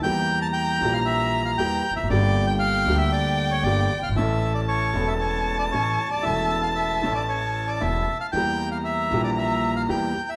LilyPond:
<<
  \new Staff \with { instrumentName = "Violin" } { \time 4/4 \key a \phrygian \tempo 4 = 116 bes''1 | g''1 | a''1~ | a''1 |
bes''1 | }
  \new Staff \with { instrumentName = "Bandoneon" } { \time 4/4 \key a \phrygian g''8. a''16 g''8. f''16 e''8. f''16 g''8. e''16 | d''8. g''16 f''8. e''16 d''8. cis''16 d''8. f''16 | e''8. d''16 cis''8. e''16 cis''8. d''16 cis''8. d''16 | e''8. f''16 e''8. d''16 cis''8. d''16 e''8. f''16 |
g''8. f''16 e''8. d''16 e''8. f''16 g''8. e''16 | }
  \new Staff \with { instrumentName = "Grand piano" } { \clef bass \time 4/4 \key a \phrygian <e, e g bes g'>4. <bes,, bes, e g bes g'>4. <e, e g bes g'>8 r32 e,32 f,32 fis,32 | <g,, g, d g bes g'>4. <d, d g bes g'>4. <g,, g, d g bes g'>8 r32 fis,,32 g,,32 gis,,32 | <a,, a, e a cis' a'>4. <e,, e, e a cis' a'>4. <a,, a, e a cis' a'>8 r32 cis,,32 d,,32 ees,,32 | <e,, e, e a cis' a'>4. <a,, a, e a cis' a'>4. <e,, e, e a cis' a'>8 r8 |
<e, e g bes g'>4. <bes,, bes, e g bes g'>4. <e, e g bes g'>8 r8 | }
  \new Staff \with { instrumentName = "Upright bass" } { \clef bass \time 4/4 \key a \phrygian e,4~ e,16. r32 bes,,4~ bes,,16. r32 e,16. r16 e,,32 f,,32 fis,,32 | g,,4~ g,,16. r32 d,4~ d,16. r32 g,,16. r16 fis,,32 g,,32 gis,,32 | a,,4~ a,,16. r32 e,,4~ e,,16. r32 a,,16. r8 r32 | e,,4~ e,,16. r32 a,,4~ a,,16. r32 e,,16. r8 r32 |
e,4~ e,16. r32 bes,,4~ bes,,16. r32 e,16. r8 r32 | }
>>